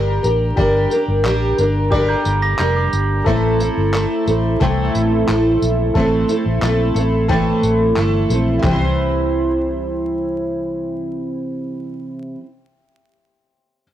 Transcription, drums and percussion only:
0, 0, Header, 1, 2, 480
1, 0, Start_track
1, 0, Tempo, 671892
1, 409, Time_signature, 4, 2, 24, 8
1, 9957, End_track
2, 0, Start_track
2, 0, Title_t, "Drums"
2, 173, Note_on_c, 9, 54, 71
2, 244, Note_off_c, 9, 54, 0
2, 411, Note_on_c, 9, 36, 123
2, 482, Note_off_c, 9, 36, 0
2, 652, Note_on_c, 9, 54, 65
2, 723, Note_off_c, 9, 54, 0
2, 891, Note_on_c, 9, 39, 116
2, 962, Note_off_c, 9, 39, 0
2, 1132, Note_on_c, 9, 54, 66
2, 1203, Note_off_c, 9, 54, 0
2, 1372, Note_on_c, 9, 36, 127
2, 1443, Note_off_c, 9, 36, 0
2, 1610, Note_on_c, 9, 54, 66
2, 1681, Note_off_c, 9, 54, 0
2, 1848, Note_on_c, 9, 39, 110
2, 1919, Note_off_c, 9, 39, 0
2, 2092, Note_on_c, 9, 54, 74
2, 2163, Note_off_c, 9, 54, 0
2, 2332, Note_on_c, 9, 36, 123
2, 2403, Note_off_c, 9, 36, 0
2, 2573, Note_on_c, 9, 54, 66
2, 2645, Note_off_c, 9, 54, 0
2, 2812, Note_on_c, 9, 39, 119
2, 2883, Note_off_c, 9, 39, 0
2, 3054, Note_on_c, 9, 54, 77
2, 3125, Note_off_c, 9, 54, 0
2, 3293, Note_on_c, 9, 36, 127
2, 3364, Note_off_c, 9, 36, 0
2, 3534, Note_on_c, 9, 54, 64
2, 3605, Note_off_c, 9, 54, 0
2, 3774, Note_on_c, 9, 39, 125
2, 3845, Note_off_c, 9, 39, 0
2, 4016, Note_on_c, 9, 54, 70
2, 4087, Note_off_c, 9, 54, 0
2, 4251, Note_on_c, 9, 36, 120
2, 4323, Note_off_c, 9, 36, 0
2, 4492, Note_on_c, 9, 54, 66
2, 4564, Note_off_c, 9, 54, 0
2, 4730, Note_on_c, 9, 39, 120
2, 4802, Note_off_c, 9, 39, 0
2, 4972, Note_on_c, 9, 54, 66
2, 5044, Note_off_c, 9, 54, 0
2, 5211, Note_on_c, 9, 36, 126
2, 5283, Note_off_c, 9, 36, 0
2, 5453, Note_on_c, 9, 54, 63
2, 5525, Note_off_c, 9, 54, 0
2, 5689, Note_on_c, 9, 39, 127
2, 5760, Note_off_c, 9, 39, 0
2, 5932, Note_on_c, 9, 54, 74
2, 6003, Note_off_c, 9, 54, 0
2, 6170, Note_on_c, 9, 39, 84
2, 6170, Note_on_c, 9, 43, 116
2, 6171, Note_on_c, 9, 36, 101
2, 6241, Note_off_c, 9, 39, 0
2, 6241, Note_off_c, 9, 43, 0
2, 6242, Note_off_c, 9, 36, 0
2, 9957, End_track
0, 0, End_of_file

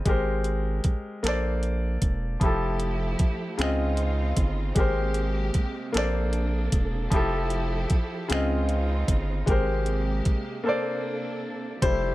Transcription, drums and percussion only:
0, 0, Header, 1, 2, 480
1, 0, Start_track
1, 0, Tempo, 784314
1, 37, Time_signature, 6, 3, 24, 8
1, 7434, End_track
2, 0, Start_track
2, 0, Title_t, "Drums"
2, 34, Note_on_c, 9, 42, 62
2, 35, Note_on_c, 9, 36, 104
2, 95, Note_off_c, 9, 42, 0
2, 97, Note_off_c, 9, 36, 0
2, 271, Note_on_c, 9, 42, 45
2, 333, Note_off_c, 9, 42, 0
2, 513, Note_on_c, 9, 42, 58
2, 518, Note_on_c, 9, 36, 81
2, 574, Note_off_c, 9, 42, 0
2, 579, Note_off_c, 9, 36, 0
2, 758, Note_on_c, 9, 42, 54
2, 775, Note_on_c, 9, 26, 99
2, 819, Note_off_c, 9, 42, 0
2, 836, Note_off_c, 9, 26, 0
2, 996, Note_on_c, 9, 42, 44
2, 1057, Note_off_c, 9, 42, 0
2, 1234, Note_on_c, 9, 42, 70
2, 1236, Note_on_c, 9, 36, 77
2, 1296, Note_off_c, 9, 42, 0
2, 1297, Note_off_c, 9, 36, 0
2, 1475, Note_on_c, 9, 36, 98
2, 1476, Note_on_c, 9, 42, 57
2, 1536, Note_off_c, 9, 36, 0
2, 1537, Note_off_c, 9, 42, 0
2, 1711, Note_on_c, 9, 42, 45
2, 1772, Note_off_c, 9, 42, 0
2, 1953, Note_on_c, 9, 42, 63
2, 1957, Note_on_c, 9, 36, 78
2, 2014, Note_off_c, 9, 42, 0
2, 2018, Note_off_c, 9, 36, 0
2, 2195, Note_on_c, 9, 42, 55
2, 2212, Note_on_c, 9, 26, 99
2, 2257, Note_off_c, 9, 42, 0
2, 2273, Note_off_c, 9, 26, 0
2, 2431, Note_on_c, 9, 42, 47
2, 2492, Note_off_c, 9, 42, 0
2, 2672, Note_on_c, 9, 42, 71
2, 2674, Note_on_c, 9, 36, 82
2, 2733, Note_off_c, 9, 42, 0
2, 2735, Note_off_c, 9, 36, 0
2, 2911, Note_on_c, 9, 42, 65
2, 2913, Note_on_c, 9, 36, 100
2, 2972, Note_off_c, 9, 42, 0
2, 2974, Note_off_c, 9, 36, 0
2, 3148, Note_on_c, 9, 42, 45
2, 3209, Note_off_c, 9, 42, 0
2, 3391, Note_on_c, 9, 42, 60
2, 3396, Note_on_c, 9, 36, 77
2, 3452, Note_off_c, 9, 42, 0
2, 3457, Note_off_c, 9, 36, 0
2, 3637, Note_on_c, 9, 42, 54
2, 3654, Note_on_c, 9, 26, 106
2, 3698, Note_off_c, 9, 42, 0
2, 3715, Note_off_c, 9, 26, 0
2, 3872, Note_on_c, 9, 42, 46
2, 3934, Note_off_c, 9, 42, 0
2, 4114, Note_on_c, 9, 42, 73
2, 4115, Note_on_c, 9, 36, 83
2, 4175, Note_off_c, 9, 42, 0
2, 4177, Note_off_c, 9, 36, 0
2, 4355, Note_on_c, 9, 36, 105
2, 4355, Note_on_c, 9, 42, 64
2, 4416, Note_off_c, 9, 36, 0
2, 4416, Note_off_c, 9, 42, 0
2, 4592, Note_on_c, 9, 42, 51
2, 4653, Note_off_c, 9, 42, 0
2, 4833, Note_on_c, 9, 42, 58
2, 4838, Note_on_c, 9, 36, 80
2, 4894, Note_off_c, 9, 42, 0
2, 4899, Note_off_c, 9, 36, 0
2, 5077, Note_on_c, 9, 42, 62
2, 5094, Note_on_c, 9, 26, 108
2, 5138, Note_off_c, 9, 42, 0
2, 5155, Note_off_c, 9, 26, 0
2, 5317, Note_on_c, 9, 42, 47
2, 5378, Note_off_c, 9, 42, 0
2, 5558, Note_on_c, 9, 36, 82
2, 5559, Note_on_c, 9, 42, 76
2, 5619, Note_off_c, 9, 36, 0
2, 5620, Note_off_c, 9, 42, 0
2, 5798, Note_on_c, 9, 36, 105
2, 5801, Note_on_c, 9, 42, 63
2, 5859, Note_off_c, 9, 36, 0
2, 5862, Note_off_c, 9, 42, 0
2, 6035, Note_on_c, 9, 42, 45
2, 6096, Note_off_c, 9, 42, 0
2, 6275, Note_on_c, 9, 42, 59
2, 6279, Note_on_c, 9, 36, 87
2, 6336, Note_off_c, 9, 42, 0
2, 6340, Note_off_c, 9, 36, 0
2, 7236, Note_on_c, 9, 36, 107
2, 7236, Note_on_c, 9, 42, 70
2, 7297, Note_off_c, 9, 36, 0
2, 7297, Note_off_c, 9, 42, 0
2, 7434, End_track
0, 0, End_of_file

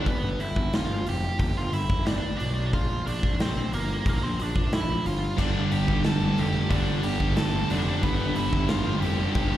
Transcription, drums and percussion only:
0, 0, Header, 1, 2, 480
1, 0, Start_track
1, 0, Tempo, 331492
1, 98, Time_signature, 4, 2, 24, 8
1, 13859, End_track
2, 0, Start_track
2, 0, Title_t, "Drums"
2, 91, Note_on_c, 9, 46, 53
2, 92, Note_on_c, 9, 36, 102
2, 236, Note_off_c, 9, 36, 0
2, 236, Note_off_c, 9, 46, 0
2, 578, Note_on_c, 9, 46, 63
2, 723, Note_off_c, 9, 46, 0
2, 815, Note_on_c, 9, 36, 86
2, 960, Note_off_c, 9, 36, 0
2, 1058, Note_on_c, 9, 46, 60
2, 1067, Note_on_c, 9, 38, 108
2, 1203, Note_off_c, 9, 46, 0
2, 1212, Note_off_c, 9, 38, 0
2, 1543, Note_on_c, 9, 46, 62
2, 1688, Note_off_c, 9, 46, 0
2, 2020, Note_on_c, 9, 36, 104
2, 2021, Note_on_c, 9, 46, 60
2, 2165, Note_off_c, 9, 36, 0
2, 2165, Note_off_c, 9, 46, 0
2, 2508, Note_on_c, 9, 46, 63
2, 2653, Note_off_c, 9, 46, 0
2, 2747, Note_on_c, 9, 36, 91
2, 2892, Note_off_c, 9, 36, 0
2, 2985, Note_on_c, 9, 46, 61
2, 2994, Note_on_c, 9, 38, 108
2, 3130, Note_off_c, 9, 46, 0
2, 3139, Note_off_c, 9, 38, 0
2, 3472, Note_on_c, 9, 46, 53
2, 3617, Note_off_c, 9, 46, 0
2, 3956, Note_on_c, 9, 46, 57
2, 3958, Note_on_c, 9, 36, 101
2, 4101, Note_off_c, 9, 46, 0
2, 4103, Note_off_c, 9, 36, 0
2, 4450, Note_on_c, 9, 46, 58
2, 4595, Note_off_c, 9, 46, 0
2, 4680, Note_on_c, 9, 36, 91
2, 4825, Note_off_c, 9, 36, 0
2, 4920, Note_on_c, 9, 46, 60
2, 4929, Note_on_c, 9, 38, 117
2, 5065, Note_off_c, 9, 46, 0
2, 5074, Note_off_c, 9, 38, 0
2, 5403, Note_on_c, 9, 46, 60
2, 5547, Note_off_c, 9, 46, 0
2, 5878, Note_on_c, 9, 36, 110
2, 5885, Note_on_c, 9, 46, 64
2, 6023, Note_off_c, 9, 36, 0
2, 6030, Note_off_c, 9, 46, 0
2, 6363, Note_on_c, 9, 46, 61
2, 6508, Note_off_c, 9, 46, 0
2, 6598, Note_on_c, 9, 36, 90
2, 6742, Note_off_c, 9, 36, 0
2, 6840, Note_on_c, 9, 46, 58
2, 6849, Note_on_c, 9, 38, 108
2, 6985, Note_off_c, 9, 46, 0
2, 6993, Note_off_c, 9, 38, 0
2, 7324, Note_on_c, 9, 46, 58
2, 7469, Note_off_c, 9, 46, 0
2, 7796, Note_on_c, 9, 36, 105
2, 7802, Note_on_c, 9, 49, 92
2, 7941, Note_off_c, 9, 36, 0
2, 7946, Note_off_c, 9, 49, 0
2, 8276, Note_on_c, 9, 46, 56
2, 8420, Note_off_c, 9, 46, 0
2, 8518, Note_on_c, 9, 36, 83
2, 8663, Note_off_c, 9, 36, 0
2, 8747, Note_on_c, 9, 46, 56
2, 8756, Note_on_c, 9, 38, 105
2, 8892, Note_off_c, 9, 46, 0
2, 8901, Note_off_c, 9, 38, 0
2, 9233, Note_on_c, 9, 46, 57
2, 9378, Note_off_c, 9, 46, 0
2, 9707, Note_on_c, 9, 46, 54
2, 9710, Note_on_c, 9, 36, 100
2, 9852, Note_off_c, 9, 46, 0
2, 9855, Note_off_c, 9, 36, 0
2, 10181, Note_on_c, 9, 46, 67
2, 10326, Note_off_c, 9, 46, 0
2, 10428, Note_on_c, 9, 36, 88
2, 10573, Note_off_c, 9, 36, 0
2, 10663, Note_on_c, 9, 46, 66
2, 10672, Note_on_c, 9, 38, 118
2, 10808, Note_off_c, 9, 46, 0
2, 10817, Note_off_c, 9, 38, 0
2, 11150, Note_on_c, 9, 46, 65
2, 11295, Note_off_c, 9, 46, 0
2, 11626, Note_on_c, 9, 46, 57
2, 11629, Note_on_c, 9, 36, 112
2, 11771, Note_off_c, 9, 46, 0
2, 11774, Note_off_c, 9, 36, 0
2, 12099, Note_on_c, 9, 46, 61
2, 12244, Note_off_c, 9, 46, 0
2, 12348, Note_on_c, 9, 36, 94
2, 12493, Note_off_c, 9, 36, 0
2, 12574, Note_on_c, 9, 46, 62
2, 12583, Note_on_c, 9, 38, 122
2, 12719, Note_off_c, 9, 46, 0
2, 12728, Note_off_c, 9, 38, 0
2, 13063, Note_on_c, 9, 46, 58
2, 13207, Note_off_c, 9, 46, 0
2, 13533, Note_on_c, 9, 46, 59
2, 13542, Note_on_c, 9, 36, 112
2, 13678, Note_off_c, 9, 46, 0
2, 13687, Note_off_c, 9, 36, 0
2, 13859, End_track
0, 0, End_of_file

